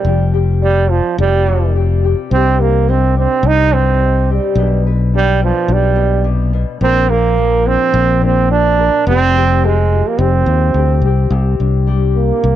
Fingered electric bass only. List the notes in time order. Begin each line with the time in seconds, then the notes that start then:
0.05 F1
1.18 F1
2.31 C2
3.43 C2
4.55 B1
5.68 B1
6.81 A#1
7.94 A#1
9.07 F1
10.19 F1
10.46 D#2
10.74 D2
11.02 C2
11.30 C2
11.60 C2
12.44 C2